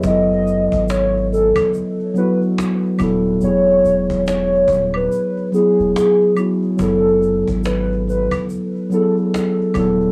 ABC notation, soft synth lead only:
X:1
M:4/4
L:1/16
Q:"Swing 16ths" 1/4=71
K:F#dor
V:1 name="Soft synth lead"
d4 c2 A2 z2 B z4 z | c4 c3 B3 G2 G2 z2 | A4 B2 B2 z2 A z4 z |]